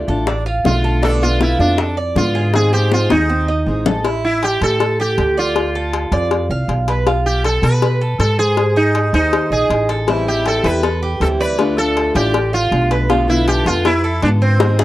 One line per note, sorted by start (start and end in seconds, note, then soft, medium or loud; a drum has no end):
0.08 0.61 A1 medium
0.08 0.27 A3 medium
0.08 0.27 D4 medium
0.08 0.26 F4 medium
0.08 0.27 A4 medium
0.08 high bongo soft
0.27 0.46 D4 medium
0.27 muted steel-string acoustic guitar stroke medium
0.27 high bongo medium
0.46 0.83 F4 medium
0.64 1.53 B1 medium
0.64 1.02 D3 medium
0.64 1.02 A3 medium
0.64 1.03 D4 medium
0.64 1.01 F4 medium
0.64 1.03 F4 medium
0.64 high bongo soft
0.64 low bongo medium
0.84 1.02 A4 medium
0.84 high bongo soft
1.03 1.21 B2 medium
1.03 1.21 D3 medium
1.03 1.21 A3 medium
1.03 1.21 B3 medium
1.03 1.39 D4 medium
1.03 1.20 F4 medium
1.03 1.22 A4 medium
1.03 high bongo medium
1.21 1.60 D3 medium
1.21 1.59 A3 medium
1.21 1.59 B3 medium
1.21 1.58 F4 medium
1.21 1.41 F4 loud
1.21 high bongo soft
1.41 1.60 E4 medium
1.41 1.77 F4 medium
1.41 high bongo medium
1.59 2.12 F2 medium
1.59 1.77 D3 medium
1.59 1.78 A3 medium
1.59 1.78 B3 medium
1.59 1.95 D4 medium
1.59 1.78 F4 medium
1.59 high bongo soft
1.78 1.97 A4 medium
1.78 muted steel-string acoustic guitar stroke medium
1.78 high bongo medium
1.97 2.34 D5 medium
2.15 3.04 G#2 medium
2.15 2.53 D3 medium
2.15 2.54 B3 medium
2.15 2.52 F4 medium
2.15 2.54 F4 medium
2.15 high bongo soft
2.15 low bongo medium
2.35 2.72 G#4 medium
2.35 high bongo soft
2.53 2.72 D#3 medium
2.53 2.72 G#3 medium
2.53 2.72 C4 medium
2.53 2.72 D#4 medium
2.53 2.73 G#4 medium
2.53 2.71 G#4 medium
2.53 high bongo medium
2.72 3.11 G#3 medium
2.72 3.10 C4 medium
2.72 3.09 D#4 medium
2.72 2.91 G4 loud
2.72 3.09 G#4 medium
2.72 3.09 C5 medium
2.72 high bongo soft
2.92 3.11 F4 medium
2.92 high bongo medium
3.10 3.63 D#2 medium
3.10 3.28 G#3 medium
3.10 3.28 C4 medium
3.10 3.29 D#4 medium
3.10 3.46 D#4 medium
3.10 3.28 G#4 medium
3.10 3.29 G#4 medium
3.10 high bongo medium
3.29 3.48 C4 medium
3.29 muted steel-string acoustic guitar stroke medium
3.48 3.85 D#4 medium
3.66 4.55 A1 medium
3.66 4.04 G#3 soft
3.66 4.04 C4 soft
3.66 4.05 D#4 medium
3.66 4.05 G#4 medium
3.86 4.04 A4 medium
3.86 low bongo loud
4.05 4.41 E4 medium
4.05 cowbell loud
4.25 4.42 E4 medium
4.43 4.79 G4 medium
4.43 4.61 G4 loud
4.43 cowbell medium
4.61 5.14 A2 medium
4.61 4.97 A4 loud
4.61 cowbell medium
4.80 4.99 A4 medium
4.80 cowbell loud
5.00 5.36 G4 medium
5.00 5.38 G4 medium
5.18 6.06 D2 medium
5.18 cowbell medium
5.37 6.85 F4 medium
5.37 5.74 D5 medium
5.56 cowbell loud
5.75 6.12 A4 medium
5.93 cowbell medium
6.12 6.47 F2 loud
6.12 6.49 D5 medium
6.12 cowbell medium
6.31 cowbell loud
6.49 6.67 C2 medium
6.49 6.87 F5 medium
6.68 7.57 B1 medium
6.68 cowbell medium
6.88 7.06 B4 medium
6.88 cowbell medium
7.07 7.43 F4 medium
7.07 cowbell loud
7.26 7.45 G4 medium
7.44 7.81 A4 medium
7.44 7.64 A4 medium
7.44 cowbell medium
7.62 8.15 B2 loud
7.62 8.16 B4 loud
7.62 cowbell medium
7.82 8.01 B4 medium
7.82 cowbell loud
8.01 8.38 A4 medium
8.19 9.08 G#2 medium
8.19 8.37 A4 loud
8.19 cowbell medium
8.39 8.77 G#4 loud
8.39 8.75 C5 medium
8.57 cowbell loud
8.76 9.13 D#4 loud
8.76 9.13 G#4 medium
8.95 cowbell medium
9.13 9.48 D#2 medium
9.13 9.49 D#4 medium
9.13 9.50 C5 medium
9.13 cowbell medium
9.33 cowbell loud
9.50 9.68 A#1 medium
9.50 9.87 G#4 medium
9.50 9.88 D#5 medium
9.70 10.58 A1 medium
9.70 cowbell medium
9.89 10.08 A4 medium
9.89 cowbell medium
10.07 10.26 E3 medium
10.07 10.26 G3 medium
10.07 10.27 C4 medium
10.07 10.45 E4 medium
10.07 10.26 E4 medium
10.07 cowbell loud
10.27 10.65 G3 medium
10.27 10.64 C4 medium
10.27 10.63 E4 medium
10.27 10.45 G4 loud
10.46 10.82 G4 medium
10.46 10.66 A4 loud
10.46 cowbell medium
10.64 11.17 E2 loud
10.64 10.82 G3 medium
10.64 10.82 C4 medium
10.64 10.82 E4 medium
10.64 11.18 B4 loud
10.64 cowbell medium
10.83 11.02 A4 medium
10.83 muted steel-string acoustic guitar stroke medium
10.83 cowbell loud
11.03 11.39 G4 medium
11.20 12.09 D2 medium
11.20 11.57 E3 medium
11.20 11.58 G3 medium
11.20 11.59 C4 medium
11.20 11.59 E4 medium
11.20 11.27 A4 medium
11.20 cowbell medium
11.40 11.75 B4 medium
11.40 11.77 D5 medium
11.58 11.76 D3 medium
11.58 11.77 A3 medium
11.58 11.77 D4 medium
11.58 11.75 F4 medium
11.58 cowbell loud
11.77 12.15 A3 medium
11.77 12.15 D4 medium
11.77 12.13 F4 medium
11.77 12.14 A4 medium
11.77 12.13 A4 loud
11.97 cowbell medium
12.14 12.68 A1 loud
12.14 12.33 A3 medium
12.14 12.33 D4 medium
12.14 12.33 F4 medium
12.14 12.54 G4 medium
12.14 12.52 D5 medium
12.14 cowbell medium
12.33 muted steel-string acoustic guitar stroke medium
12.33 cowbell loud
12.53 12.89 F4 medium
12.53 12.90 F5 medium
12.71 13.60 B1 medium
12.71 13.08 D3 medium
12.71 13.09 A3 medium
12.71 13.09 D4 medium
12.71 13.10 F4 medium
12.71 cowbell medium
12.91 13.09 B4 medium
12.91 cowbell medium
13.09 13.27 B2 medium
13.09 13.28 D3 medium
13.09 13.28 A3 medium
13.09 13.27 B3 medium
13.09 13.46 F4 medium
13.09 13.27 F4 medium
13.09 cowbell loud
13.28 13.66 D3 medium
13.28 13.66 A3 medium
13.28 13.65 B3 medium
13.28 13.48 E4 loud
13.28 13.64 F4 medium
13.47 13.65 G4 loud
13.47 13.84 A4 medium
13.47 cowbell medium
13.66 14.18 F2 medium
13.66 13.84 D3 medium
13.66 13.84 A3 medium
13.66 13.84 B3 medium
13.66 13.84 F4 medium
13.66 13.86 F4 loud
13.66 cowbell medium
13.85 14.23 E4 loud
13.85 14.03 B4 medium
13.85 muted steel-string acoustic guitar stroke medium
13.85 cowbell loud
14.04 14.40 A4 medium
14.22 14.84 G#2 medium
14.22 14.59 D3 medium
14.22 14.60 B3 medium
14.22 14.28 D4 loud
14.22 14.60 F4 medium
14.22 cowbell medium
14.42 14.84 C4 medium
14.42 14.78 C5 medium
14.60 14.78 D#3 medium
14.60 14.78 G#3 medium
14.60 14.79 C4 medium
14.60 14.78 D#4 medium
14.60 14.77 G#4 medium
14.60 cowbell loud
14.60 high bongo loud
14.79 14.84 G#3 medium
14.79 14.84 C4 medium
14.79 14.84 D#4 medium
14.79 14.84 G#4 medium
14.79 high bongo medium